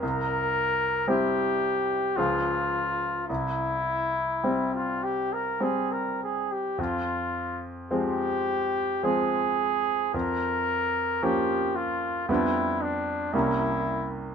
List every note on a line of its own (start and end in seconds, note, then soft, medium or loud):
0.01 1.05 C2 soft
0.01 1.10 A#4 medium
1.07 2.13 G3 soft
1.07 2.13 C4 soft
1.07 2.13 E4 soft
1.07 2.18 G4 medium
2.16 3.26 C#2 soft
2.16 3.25 F3 soft
2.16 3.25 G#3 soft
2.16 3.27 F4 soft
2.16 3.25 F4 soft
3.28 4.41 C2 soft
3.28 4.70 E4 medium
4.44 5.57 G3 soft
4.44 5.57 C4 soft
4.75 5.05 F4 soft
5.03 5.35 G4 soft
5.33 5.64 A#4 soft
5.60 6.73 G3 soft
5.60 6.74 C4 soft
5.60 5.93 G#4 soft
5.92 6.20 A#4 soft
6.23 6.53 G#4 soft
6.51 6.81 G4 soft
6.78 7.88 F2 soft
6.78 7.64 F4 medium
7.91 8.99 F3 soft
7.91 8.99 G#3 soft
7.91 9.00 C4 soft
7.91 9.05 G4 medium
9.03 10.10 F3 soft
9.03 10.10 G#3 soft
9.03 10.10 C4 soft
9.03 10.14 G#4 medium
10.14 11.19 F2 soft
10.14 11.25 A#4 medium
11.22 12.25 F3 soft
11.22 12.25 A#3 soft
11.22 12.25 C#4 soft
11.22 11.77 G4 medium
11.76 12.28 F4 soft
12.28 13.30 F2 soft
12.28 13.29 G3 soft
12.28 13.30 B3 soft
12.28 13.30 D4 soft
12.28 12.83 E4 medium
12.82 13.34 D4 soft
13.33 14.35 C2 soft
13.33 14.35 G3 soft
13.33 14.35 A#3 soft
13.33 14.35 C#4 soft
13.33 14.12 E4 medium